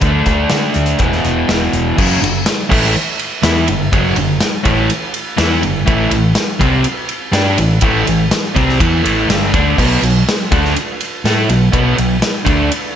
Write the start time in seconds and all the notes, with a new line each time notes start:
0.01 D2 D3 A3 D4, kick, closed hi-hat
0.26 D2, kick, closed hi-hat
0.50 D3, snare, closed hi-hat
0.74 D2, closed hi-hat
0.86 closed hi-hat
0.98 E1 E2 B2 E3, kick, closed hi-hat
1.12 snare
1.24 E1, closed hi-hat
1.49 E1, snare, closed hi-hat
1.73 E1, closed hi-hat
1.97 F#1 F#2 C#3 F#3, kick, crash
2.21 F#1 G2 D3, ride
2.46 snare, ride
2.69 A1 A2 E3 A3, kick, crash
2.84 snare
3.19 ride
3.43 E2 E3 B3 E4, snare, ride
3.68 F#1 G2 D3, ride
3.92 F#1 F#2 C#3 F#3, kick, ride
4.15 F#1 G2 D3, ride
4.41 snare, ride
4.63 A1 A2 E3 A3, kick, ride
4.90 ride
5.14 ride
5.37 E2 E3 B3 E4, snare, ride
5.62 F#1 G2 D3, ride
5.86 A1 A2 E3 A3, kick, ride
6.11 A1 A2 E3, ride
6.35 snare, ride
6.59 C2 C3 G3 C4, kick, ride
6.84 ride
7.09 ride
7.32 G2 G3 D4 G4, snare, ride
7.58 A1 A2 E3, ride
7.81 A1 A2 E3 A3, kick, ride
8.06 A1 A2 E3, ride
8.31 snare, ride
8.55 C2 C3 G3 C4, kick, ride
8.69 snare
8.80 E2 E3 B3 E4, kick, ride
9.03 A1 A2 E3 A3, ride
9.28 G1 G2 D3 G3, snare, ride
9.54 D2 D3 A3 D4, kick, ride
9.78 B1 B2 F#3 B3, kick, crash
10.02 B1 B2 F#3, ride
10.29 snare, ride
10.51 D2 D3 A3 D4, kick, ride
10.65 snare
10.76 ride
11.01 ride
11.24 A2 A3 E4 A4, snare, ride
11.48 B1 B2 F#3, ride
11.72 B1 B2 F#3 B3, kick, ride
11.96 B1 B2 F#3, ride
12.22 snare, ride
12.45 D2 D3 A3 D4, kick, ride
12.72 ride